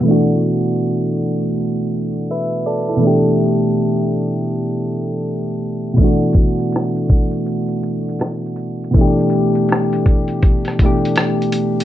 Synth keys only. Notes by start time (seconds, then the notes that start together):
0.01 B2 E3
0.05 A3 D4
0.11 F#4
2.31 B4 E5
2.66 A4 D5
2.89 E4 A4
2.97 B2 E3
3.02 A3 D4
3.07 G4
5.94 B2 E3
5.99 A3 D4
6.04 F#4
8.91 B2 E3
8.96 A3 D4
9.01 G4
10.81 B2 E3 A3
10.85 D4 G4